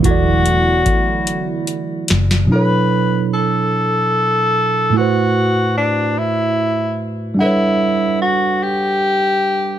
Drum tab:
HH |x-x-x-x-x-x-|------------|------------|------------|
SD |----------oo|------------|------------|------------|
BD |o---o-------|------------|------------|------------|